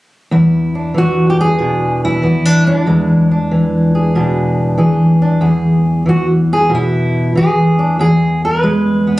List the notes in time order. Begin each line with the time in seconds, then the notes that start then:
0.31 E2 E4
0.75 D4
0.94 E3 F#4
1.30 G4
1.41 G#4
1.59 B2 D4
2.05 E4
2.22 E3 B3
2.45 D4
2.67 D4
2.86 E2 G#3
3.31 D4
3.51 E3
3.95 G#4
4.15 B2 D4
4.78 E3 G#4
5.22 D4
5.41 E2 G#4
6.06 E3 F#4
6.53 G#4
6.70 B2
6.75 E4
7.35 E3 G#4
7.79 D4
7.99 E2 G#4
8.45 B4
8.63 G#3
9.07 B3